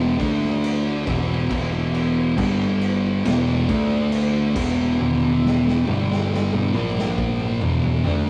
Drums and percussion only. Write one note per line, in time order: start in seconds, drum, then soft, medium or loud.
0.20 kick loud
0.20 crash medium
0.45 snare soft
0.64 crash loud
1.07 kick loud
1.07 crash medium
1.51 kick loud
1.51 crash medium
1.95 crash medium
2.38 kick loud
2.38 crash medium
2.81 crash medium
3.25 snare loud
3.25 crash medium
3.69 kick loud
3.69 crash medium
4.12 crash medium
4.56 kick loud
4.56 crash loud
5.00 high tom medium
5.22 high tom medium
5.46 snare medium
5.68 snare medium
5.87 mid tom medium
6.12 snare medium
6.34 snare medium
6.53 mid tom medium
6.74 mid tom loud
6.99 snare medium
7.18 kick loud
7.40 mid tom medium
7.61 floor tom loud
7.83 floor tom loud
8.04 floor tom loud